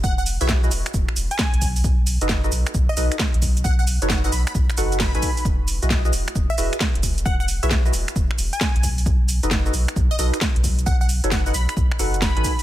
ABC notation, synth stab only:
X:1
M:4/4
L:1/16
Q:"Swing 16ths" 1/4=133
K:E
V:1 name="Synth stab"
z3 [EFGBc]2 [EFGBd] z8 z2 | z3 [DFABd]2 [DFABd] z4 [DFABd] z4 z | z3 [DFABc]2 [DFABd] z4 [DFABf]3 [DFABg] z2 | z3 [EFGBd]2 [EFGBd] z4 [EFGBd] z4 z |
z3 [EFGBc]2 [EFGBd] z8 z2 | z3 [DFABd]2 [DFABd] z4 [DFABd] z4 z | z3 [DFABc]2 [DFABd] z4 [DFABf]3 [DFABg] z2 |]